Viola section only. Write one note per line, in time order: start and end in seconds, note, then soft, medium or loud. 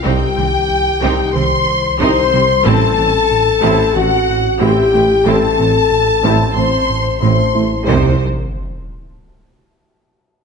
0.04 0.35 C4 loud
0.04 0.35 D#4 loud
0.37 0.45 G3 medium
0.37 0.45 C4 medium
1.02 1.33 C4 medium
1.02 1.33 D#4 loud
1.35 1.43 G3 medium
1.35 1.43 C4 medium
2.00 2.31 C4 loud
2.00 2.31 D#4 loud
2.32 2.40 G3 loud
2.32 2.41 C4 medium
2.65 2.95 C4 loud
2.65 2.95 E4 loud
2.96 3.05 A3 medium
2.96 3.04 C4 medium
3.62 3.93 C4 loud
3.62 3.93 E4 loud
3.95 4.03 A3 loud
3.95 4.03 C4 medium
4.61 4.91 C4 loud
4.61 4.91 E4 loud
4.93 5.01 A3 loud
4.93 5.01 C4 loud
5.26 5.57 C4 loud
5.26 5.57 E4 loud
5.58 5.66 A3 medium
5.58 5.67 C4 medium
6.24 6.55 C4 loud
6.24 6.55 E4 loud
6.56 6.64 A3 medium
6.56 6.64 C4 medium
7.22 7.53 C4 medium
7.22 7.52 E4 medium
7.54 7.62 A3 medium
7.54 7.62 C4 medium
7.85 8.23 C4 loud
7.85 8.23 D#4 loud